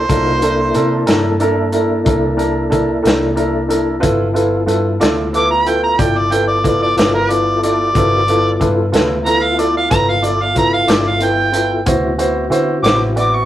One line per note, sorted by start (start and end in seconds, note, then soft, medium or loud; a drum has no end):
0.00 1.05 C5 loud
0.09 0.71 C2 medium
0.09 0.41 A#3 medium
0.09 0.34 D4 medium
0.09 0.42 D#4 soft
0.09 0.34 E4 medium
0.09 0.42 F4 medium
0.09 0.34 A4 medium
0.09 0.42 A#4 medium
0.09 0.34 A#4 medium
0.09 kick loud
0.09 closed hi-hat medium
0.42 3.99 A#3 medium
0.42 0.67 D4 medium
0.42 3.99 D4 medium
0.42 0.67 E4 soft
0.42 3.99 E4 medium
0.42 0.67 A4 soft
0.42 3.99 A4 medium
0.42 0.67 A#4 medium
0.42 closed hi-hat medium
0.74 1.05 C3 medium
0.74 0.99 D4 medium
0.74 0.99 E4 medium
0.74 0.99 A4 medium
0.74 0.99 A#4 medium
0.74 closed hi-hat medium
1.06 2.02 G2 medium
1.06 1.31 D4 medium
1.06 1.32 E4 medium
1.06 1.32 A4 medium
1.06 1.32 A#4 medium
1.06 snare loud
1.06 closed hi-hat medium
1.40 1.65 D4 medium
1.40 1.65 E4 medium
1.40 1.65 A4 medium
1.40 1.65 A#4 medium
1.40 closed hi-hat medium
1.72 1.97 D4 medium
1.72 1.98 E4 medium
1.72 1.98 A4 medium
1.72 1.98 A#4 medium
1.72 closed hi-hat medium
2.05 3.00 C2 medium
2.05 2.30 D4 medium
2.05 2.30 E4 medium
2.05 2.31 A4 medium
2.05 2.31 A#4 medium
2.05 kick loud
2.05 closed hi-hat medium
2.37 2.62 D4 medium
2.37 2.63 E4 soft
2.37 2.63 A4 medium
2.37 2.63 A#4 medium
2.37 closed hi-hat soft
2.70 2.95 D4 medium
2.70 2.96 E4 medium
2.70 2.96 A4 medium
2.70 2.96 A#4 medium
2.70 kick medium
2.70 closed hi-hat medium
3.02 3.99 C2 medium
3.02 3.28 D4 medium
3.02 3.28 E4 medium
3.02 3.28 A4 medium
3.02 3.28 A#4 medium
3.02 closed hi-hat medium
3.07 snare loud
3.35 3.61 D4 medium
3.35 3.61 E4 medium
3.35 3.62 A4 medium
3.35 3.61 A#4 medium
3.35 closed hi-hat medium
3.69 3.94 D4 medium
3.69 3.94 E4 medium
3.69 3.94 A4 medium
3.69 3.94 A#4 medium
3.69 closed hi-hat medium
4.00 4.64 G1 medium
4.00 7.91 B3 medium
4.00 4.26 E4 medium
4.00 7.91 E4 medium
4.00 4.26 F4 medium
4.00 7.91 F4 medium
4.00 4.26 A4 medium
4.00 7.91 A4 medium
4.00 4.26 B4 medium
4.00 kick loud
4.00 closed hi-hat medium
4.33 4.59 E4 medium
4.33 4.59 F4 medium
4.33 4.60 A4 medium
4.33 4.60 B4 medium
4.33 closed hi-hat medium
4.66 4.97 G2 medium
4.66 4.92 E4 medium
4.66 4.92 F4 medium
4.66 4.92 A4 medium
4.66 4.92 B4 medium
4.66 closed hi-hat medium
5.00 5.95 D2 medium
5.00 5.25 E4 medium
5.00 5.25 F4 medium
5.00 5.25 A4 medium
5.00 5.25 D5 medium
5.00 snare loud
5.00 closed hi-hat medium
5.33 5.58 E4 medium
5.33 5.58 F4 medium
5.33 5.58 A4 medium
5.33 5.59 B4 medium
5.33 5.50 D6 loud
5.33 closed hi-hat medium
5.51 5.69 A#5 medium
5.66 5.91 E4 medium
5.66 5.91 F4 medium
5.66 5.91 A4 medium
5.66 5.91 B4 medium
5.66 5.82 G5 medium
5.66 closed hi-hat medium
5.83 6.02 A#5 medium
5.98 6.93 G1 medium
5.98 6.23 E4 soft
5.98 6.23 F4 soft
5.98 6.23 A4 soft
5.98 6.24 D5 medium
5.98 6.20 G5 medium
5.98 kick loud
5.98 closed hi-hat medium
6.19 6.34 D5 medium
6.31 6.56 E4 medium
6.31 6.56 F4 soft
6.31 6.56 A4 soft
6.31 6.56 B4 medium
6.31 6.47 G5 medium
6.31 closed hi-hat medium
6.47 6.63 D5 medium
6.64 6.89 E4 medium
6.64 6.89 F4 medium
6.64 6.89 A4 soft
6.64 6.89 B4 medium
6.64 6.81 D5 medium
6.64 kick medium
6.64 closed hi-hat medium
6.82 6.97 D5 medium
6.97 7.91 G1 medium
6.97 7.21 E4 medium
6.97 7.21 F4 medium
6.97 7.21 A4 soft
6.97 7.22 B4 medium
6.97 7.13 D5 medium
6.97 snare loud
6.97 closed hi-hat medium
7.15 7.32 A#4 medium
7.30 7.54 E4 soft
7.30 7.54 F4 soft
7.30 7.54 A4 soft
7.30 7.54 B4 medium
7.30 7.62 D5 medium
7.30 closed hi-hat medium
7.63 7.87 E4 medium
7.63 7.87 F4 medium
7.63 7.88 A4 soft
7.63 8.90 D5 loud
7.63 7.88 D5 medium
7.63 closed hi-hat medium
7.93 8.57 G1 medium
7.93 8.27 C4 medium
7.93 8.20 E4 medium
7.93 8.26 F4 medium
7.93 8.20 F4 medium
7.93 8.27 F#4 medium
7.93 8.20 A4 medium
7.93 8.27 A#4 medium
7.93 kick loud
7.93 closed hi-hat medium
7.97 8.21 B4 medium
8.26 11.82 B3 medium
8.26 11.83 E4 medium
8.26 8.52 E4 soft
8.26 11.83 F4 medium
8.26 8.53 F4 soft
8.26 11.83 A4 medium
8.26 8.53 A4 medium
8.26 8.53 B4 medium
8.26 closed hi-hat medium
8.60 8.91 G2 medium
8.60 8.85 E4 medium
8.60 8.85 F4 medium
8.60 8.85 A4 medium
8.60 8.85 B4 medium
8.60 kick medium
8.60 closed hi-hat medium
8.92 9.87 D2 medium
8.92 9.17 E4 medium
8.92 9.17 F4 medium
8.92 9.17 A4 medium
8.92 9.18 B4 medium
8.92 snare loud
8.92 closed hi-hat medium
9.25 9.50 E4 medium
9.25 9.50 F4 medium
9.25 9.50 A4 medium
9.25 9.50 B4 medium
9.25 9.44 A#5 loud
9.25 closed hi-hat medium
9.43 9.58 F5 medium
9.57 9.82 E4 medium
9.57 9.83 F4 soft
9.57 9.83 A4 medium
9.57 9.74 D5 medium
9.57 9.83 D5 medium
9.57 closed hi-hat medium
9.77 9.90 F5 medium
9.90 10.85 G1 medium
9.90 10.15 E4 soft
9.90 10.15 F4 medium
9.90 10.16 A4 soft
9.90 10.15 B4 medium
9.90 10.06 A#5 loud
9.90 kick loud
9.90 snare soft
9.90 closed hi-hat medium
10.09 10.26 F5 medium
10.22 10.48 E4 soft
10.22 10.48 F4 soft
10.22 10.48 A4 soft
10.22 10.48 D5 medium
10.22 10.44 D5 medium
10.22 closed hi-hat medium
10.42 10.56 F5 medium
10.55 10.80 E4 soft
10.55 10.80 F4 soft
10.55 10.80 A4 soft
10.55 10.81 B4 medium
10.55 10.72 A#5 medium
10.55 kick medium
10.55 closed hi-hat medium
10.73 10.91 F5 loud
10.87 11.82 G1 medium
10.87 11.13 E4 medium
10.87 11.13 F4 soft
10.87 11.13 A4 soft
10.87 11.13 D5 medium
10.87 11.10 D5 medium
10.87 snare loud
10.87 closed hi-hat medium
11.08 11.25 F5 medium
11.20 11.45 E4 soft
11.20 11.45 F4 soft
11.20 11.46 A4 soft
11.20 11.46 B4 medium
11.20 11.86 G5 loud
11.20 closed hi-hat medium
11.52 11.78 E4 medium
11.52 11.78 F4 soft
11.52 11.78 A4 soft
11.52 11.78 B4 medium
11.52 closed hi-hat medium
11.86 12.48 D2 medium
11.86 13.45 B3 medium
11.86 13.45 C4 medium
11.86 12.11 E4 medium
11.86 13.45 E4 medium
11.86 12.11 F#4 medium
11.86 13.45 F#4 medium
11.86 12.11 B4 medium
11.86 12.11 C5 medium
11.86 kick loud
11.86 closed hi-hat medium
12.18 12.43 E4 medium
12.18 12.43 F#4 medium
12.18 12.43 B4 medium
12.18 12.44 C5 medium
12.18 closed hi-hat medium
12.50 12.81 D3 medium
12.50 12.75 E4 medium
12.50 12.76 F#4 medium
12.50 12.76 B4 medium
12.50 12.76 C5 medium
12.50 closed hi-hat medium
12.83 13.45 A1 medium
12.83 13.08 E4 medium
12.83 13.08 F#4 soft
12.83 13.09 B4 medium
12.83 13.08 C5 medium
12.83 12.99 D6 loud
12.83 snare loud
12.83 closed hi-hat medium
13.16 13.41 E4 medium
13.16 13.41 F#4 medium
13.16 13.41 B4 medium
13.16 13.41 D5 medium
13.16 13.36 D6 medium
13.16 closed hi-hat medium
13.35 13.45 C#6 medium